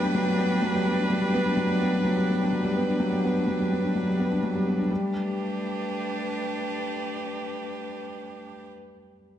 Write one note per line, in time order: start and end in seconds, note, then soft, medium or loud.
0.00 0.15 F#3 medium
0.00 0.26 G3 medium
0.00 4.89 A3 medium
0.00 0.38 B3 medium
0.00 0.03 D4 medium
0.00 4.90 D4 medium
0.00 0.51 D4 medium
0.00 4.90 B4 medium
0.00 4.91 G5 medium
0.15 0.21 F#3 medium
0.26 0.38 G3 medium
0.38 0.50 B3 medium
0.51 0.62 D4 medium
0.62 0.74 F#3 medium
0.74 0.86 G3 medium
0.86 0.97 B3 medium
0.98 1.09 D4 medium
1.10 1.21 F#3 medium
1.22 1.33 G3 medium
1.33 1.40 B3 medium
1.45 1.52 D4 medium
1.57 1.64 F#3 medium
1.69 1.81 G3 medium
1.82 1.93 B3 medium
1.93 2.04 D4 medium
2.05 2.16 F#3 medium
2.17 2.28 G3 medium
2.29 2.40 B3 medium
2.41 2.52 D4 medium
2.53 2.64 F#3 medium
2.65 2.76 G3 medium
2.76 2.83 B3 medium
2.88 2.95 D4 medium
3.00 3.07 F#3 medium
3.12 3.23 G3 medium
3.24 3.35 B3 medium
3.36 3.47 D4 medium
3.48 3.59 F#3 medium
3.60 3.71 G3 medium
3.72 3.83 B3 medium
3.84 3.95 D4 medium
3.95 4.07 F#3 medium
4.07 4.19 G3 medium
4.19 4.26 B3 medium
4.31 4.38 D4 medium
4.43 4.50 F#3 medium
4.55 4.66 G3 medium
4.67 4.78 B3 medium
4.79 4.90 D4 medium
4.90 5.13 G3 medium
4.90 8.48 A3 medium
4.98 8.56 D4 medium
5.05 8.64 G4 medium
5.12 8.71 B4 medium